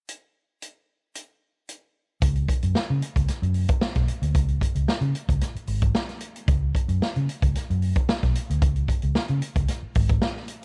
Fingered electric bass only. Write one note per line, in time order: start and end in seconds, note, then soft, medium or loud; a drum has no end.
2.22 2.45 C#2 loud
2.63 2.73 F#2 medium
2.90 3.00 C#3 medium
3.16 3.26 C#2 medium
3.28 muted fingered electric bass stroke soft
3.42 3.65 F#2 loud
3.81 muted fingered electric bass stroke soft
3.96 4.06 B1 medium
4.22 4.33 D2 loud
4.35 4.58 C#2 loud
4.75 4.86 C#2 medium
5.01 5.12 C#3 medium
5.29 5.39 C#2 loud
5.55 muted fingered electric bass stroke soft
5.68 5.91 G#1 loud
6.48 6.71 C#2 loud
6.88 6.99 F#2 loud
7.02 muted fingered electric bass stroke medium
7.16 7.27 C#3 medium
7.42 7.53 C#2 medium
7.56 muted fingered electric bass stroke soft
7.70 7.92 F#2 loud
8.09 muted fingered electric bass stroke soft
8.23 8.33 B1 medium
8.50 8.60 D2 medium
8.62 8.85 C#2 loud
9.03 9.14 C#2 medium
9.29 9.40 C#3 medium
9.56 9.66 C#2 medium
9.83 muted fingered electric bass stroke medium
9.96 10.18 G#1 loud